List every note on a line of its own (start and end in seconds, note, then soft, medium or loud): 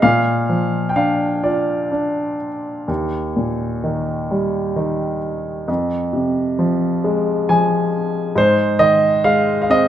0.02 2.85 A#2 medium
0.02 0.92 F5 medium
0.49 2.36 F3 soft
0.89 0.96 G5 medium
0.96 1.90 D4 soft
0.96 1.45 F5 medium
1.43 2.84 F4 soft
1.43 2.48 D5 medium
1.92 2.86 D4 soft
2.88 5.65 D#2 medium
3.36 5.19 A#2 soft
3.84 4.75 D#3 soft
4.31 5.65 G3 medium
4.76 5.66 D#3 soft
5.68 8.31 F2 medium
6.13 7.87 C3 soft
6.59 7.48 F3 medium
7.04 8.32 G#3 medium
7.49 8.34 F3 medium
7.49 8.32 G#5 medium
8.36 9.88 G#2 medium
8.36 8.82 C5 medium
8.79 9.88 D#3 medium
8.79 9.26 D#5 medium
9.24 9.88 G#3 medium
9.24 9.60 F5 medium
9.62 9.69 F5 medium
9.70 9.88 C4 medium
9.70 9.88 D#5 medium